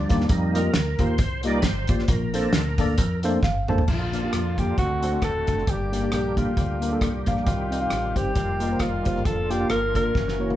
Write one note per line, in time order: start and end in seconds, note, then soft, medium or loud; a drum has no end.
0.00 0.26 F3 medium
0.00 0.26 G3 medium
0.00 0.26 D4 medium
0.09 0.27 D#2 medium
0.09 0.24 A#3 medium
0.09 0.25 D#4 medium
0.09 0.25 G4 medium
0.09 0.25 D5 medium
0.09 kick loud
0.09 snare soft
0.09 closed hi-hat medium
0.20 snare soft
0.29 0.68 F2 loud
0.29 0.61 G3 medium
0.29 0.61 A#3 medium
0.29 0.62 D#4 medium
0.29 kick loud
0.29 closed hi-hat medium
0.54 0.69 A#3 medium
0.54 0.69 F4 medium
0.54 0.69 G4 medium
0.54 1.01 A#4 loud
0.54 0.70 D#5 medium
0.54 closed hi-hat medium
0.74 0.96 D2 loud
0.74 snare loud
0.74 closed hi-hat medium
0.99 1.16 D#2 loud
0.99 1.14 A#3 medium
0.99 1.14 F4 medium
0.99 1.14 G4 medium
0.99 1.15 A#4 medium
0.99 1.41 C5 loud
0.99 kick medium
0.99 closed hi-hat medium
1.18 1.64 C2 medium
1.18 kick loud
1.18 closed hi-hat medium
1.43 1.63 G3 medium
1.43 1.58 A#3 medium
1.43 1.63 A#3 soft
1.43 1.63 D#4 medium
1.43 1.59 F4 medium
1.43 1.59 G4 medium
1.43 1.59 D5 loud
1.43 1.59 D#5 medium
1.43 closed hi-hat medium
1.58 1.64 B4 medium
1.62 1.85 G1 medium
1.62 2.02 C5 medium
1.62 kick medium
1.62 snare medium
1.62 closed hi-hat loud
1.87 2.06 A1 loud
1.87 2.03 A#3 medium
1.87 2.04 F4 medium
1.87 2.04 G4 medium
1.87 2.04 D5 medium
1.87 kick loud
1.87 closed hi-hat medium
1.99 snare soft
2.03 2.09 C5 medium
2.08 2.46 A#1 loud
2.08 2.75 A#2 medium
2.08 3.20 A#4 medium
2.08 kick loud
2.08 closed hi-hat medium
2.34 2.48 A#3 medium
2.34 2.63 C4 medium
2.34 2.48 D4 medium
2.34 2.63 D4 medium
2.34 2.62 A4 medium
2.34 2.49 A4 medium
2.34 2.49 C5 medium
2.34 closed hi-hat medium
2.53 2.98 D2 loud
2.53 snare loud
2.53 closed hi-hat medium
2.78 2.93 A#3 medium
2.78 2.94 D4 medium
2.78 2.94 A4 medium
2.78 2.94 D5 loud
2.78 kick medium
2.78 closed hi-hat medium
2.98 3.36 F2 medium
2.98 kick loud
2.98 closed hi-hat loud
3.23 3.41 A3 medium
3.23 3.38 A#3 medium
3.23 3.42 C4 soft
3.23 3.38 D4 medium
3.23 3.42 D4 medium
3.23 3.38 A4 medium
3.23 3.39 C5 loud
3.23 closed hi-hat medium
3.42 3.64 G1 medium
3.42 3.67 F5 medium
3.42 kick loud
3.42 snare medium
3.68 3.85 A1 loud
3.68 3.83 A#3 medium
3.68 3.83 D4 medium
3.68 3.83 A4 medium
3.68 3.83 C5 medium
3.68 3.87 A5 medium
3.68 mid tom loud
3.78 floor tom medium
3.88 4.26 A#1 medium
3.88 4.54 A#2 medium
3.88 5.66 D3 medium
3.88 4.77 F3 medium
3.88 4.77 A#3 medium
3.88 4.77 F4 medium
3.88 4.61 F4 medium
3.88 kick loud
3.88 crash medium
4.13 4.20 A#3 medium
4.13 4.20 D4 medium
4.13 4.20 F4 medium
4.13 4.21 D5 medium
4.13 closed hi-hat medium
4.23 4.39 A#3 medium
4.23 4.39 D4 medium
4.23 4.39 F4 medium
4.23 4.39 G4 medium
4.33 4.71 F2 medium
4.33 cross-stick medium
4.33 closed hi-hat medium
4.58 4.72 A#3 medium
4.58 4.72 D4 medium
4.58 4.73 F4 medium
4.58 4.78 G4 medium
4.58 4.73 D5 medium
4.58 kick medium
4.58 closed hi-hat medium
4.78 5.16 D2 medium
4.78 5.44 D3 medium
4.78 5.67 A3 medium
4.78 5.67 C4 soft
4.78 5.20 F#4 medium
4.78 5.67 F#4 medium
4.78 kick loud
4.78 closed hi-hat medium
5.03 5.10 A3 medium
5.03 5.10 D4 medium
5.03 5.10 F#4 medium
5.03 5.10 C5 medium
5.03 closed hi-hat medium
5.11 5.28 A3 medium
5.11 5.28 D4 medium
5.11 5.28 F#4 soft
5.11 5.28 D5 medium
5.22 5.43 D#1 medium
5.22 5.71 A4 medium
5.22 kick medium
5.22 cross-stick medium
5.22 closed hi-hat medium
5.47 5.64 F#1 medium
5.47 5.62 A3 medium
5.47 5.62 D4 medium
5.47 5.62 F#4 medium
5.47 5.62 A4 medium
5.47 kick medium
5.47 closed hi-hat medium
5.58 cross-stick soft
5.67 6.05 G1 medium
5.67 6.33 G2 medium
5.67 7.45 D3 medium
5.67 9.23 G3 medium
5.67 7.45 A#3 medium
5.67 8.34 G4 medium
5.67 6.13 G4 medium
5.67 kick loud
5.67 closed hi-hat medium
5.92 5.99 A#3 medium
5.92 5.99 D4 medium
5.92 6.00 G4 medium
5.92 6.00 D5 medium
5.92 closed hi-hat medium
6.02 6.18 A#3 medium
6.02 6.18 D4 medium
6.02 6.18 G4 medium
6.02 6.19 D5 medium
6.12 6.50 A#1 medium
6.12 6.36 G4 medium
6.12 cross-stick medium
6.12 closed hi-hat medium
6.37 6.51 A#3 medium
6.37 6.51 D4 medium
6.37 7.24 F4 medium
6.37 6.52 G4 medium
6.37 6.52 D5 medium
6.37 kick medium
6.37 closed hi-hat medium
6.57 6.95 D2 medium
6.57 kick medium
6.57 closed hi-hat medium
6.81 6.89 A#3 medium
6.81 6.89 D4 medium
6.81 6.89 G4 medium
6.81 6.90 A#4 medium
6.81 closed hi-hat medium
6.92 7.07 A#3 medium
6.92 7.08 D4 medium
6.92 7.08 G4 medium
6.92 7.08 A4 medium
7.01 7.23 C2 medium
7.01 kick medium
7.01 cross-stick medium
7.01 closed hi-hat medium
7.26 7.44 A#1 medium
7.26 7.41 A#3 medium
7.26 7.41 D4 medium
7.26 7.42 G4 medium
7.26 7.42 F5 medium
7.26 kick medium
7.26 closed hi-hat medium
7.37 cross-stick soft
7.47 7.85 C2 medium
7.47 8.13 C3 medium
7.47 9.24 D#3 medium
7.47 8.35 C4 medium
7.47 8.19 F4 medium
7.47 kick loud
7.47 closed hi-hat medium
7.71 7.78 C4 medium
7.71 7.79 D#4 medium
7.71 7.79 G4 medium
7.71 7.79 D#5 medium
7.71 closed hi-hat medium
7.80 7.97 C4 medium
7.80 7.97 D#4 soft
7.80 7.97 G4 soft
7.80 7.97 F5 medium
7.90 8.13 A1 medium
7.90 cross-stick medium
7.90 closed hi-hat medium
8.15 8.33 G1 medium
8.15 8.30 C4 medium
8.15 8.31 D#4 medium
8.15 8.31 G4 medium
8.15 8.83 G4 medium
8.15 8.31 C5 medium
8.15 kick medium
8.15 closed hi-hat medium
8.35 8.74 F1 medium
8.35 9.25 A#3 medium
8.35 9.25 F4 medium
8.35 kick medium
8.35 closed hi-hat medium
8.60 8.68 A#3 medium
8.60 8.68 F4 medium
8.60 8.69 G4 medium
8.60 8.69 D#5 medium
8.60 closed hi-hat medium
8.70 8.87 A#3 medium
8.70 8.87 F4 medium
8.70 8.87 G4 medium
8.70 8.87 C5 medium
8.79 9.27 F4 medium
8.79 kick medium
8.79 cross-stick medium
8.79 closed hi-hat medium
9.05 9.23 G1 medium
9.05 9.20 A#3 medium
9.05 9.20 F4 medium
9.05 9.21 G4 medium
9.05 9.21 C5 medium
9.05 kick medium
9.05 cross-stick soft
9.05 closed hi-hat medium
9.16 cross-stick soft
9.25 9.64 F1 loud
9.25 10.15 D3 medium
9.25 10.15 F3 medium
9.25 10.56 A#3 medium
9.25 10.15 F4 medium
9.25 9.52 A4 medium
9.25 kick loud
9.25 closed hi-hat medium
9.49 9.57 A#3 medium
9.49 9.58 D4 medium
9.49 9.58 F4 medium
9.49 9.70 G4 medium
9.49 9.58 D5 medium
9.49 closed hi-hat medium
9.60 9.76 A#3 medium
9.60 9.76 D4 soft
9.60 9.76 F4 medium
9.60 9.77 D5 medium
9.70 10.08 G1 medium
9.70 9.94 A#4 medium
9.70 cross-stick medium
9.70 closed hi-hat medium
9.94 10.10 A#3 medium
9.94 10.10 D4 medium
9.94 10.10 F4 medium
9.94 10.56 A#4 medium
9.94 10.11 D5 medium
9.94 kick medium
9.94 closed hi-hat medium
10.15 10.53 F#1 medium
10.15 10.56 E3 medium
10.15 10.56 C#4 soft
10.15 10.56 F#4 medium
10.15 kick loud
10.15 snare soft
10.28 snare soft
10.39 10.47 A#3 medium
10.39 10.47 E4 medium
10.39 10.48 F#4 medium
10.39 10.48 C#5 medium
10.49 10.56 A#3 medium
10.49 10.56 E4 medium
10.49 10.56 F#4 medium
10.49 10.56 A#4 medium
10.49 high tom medium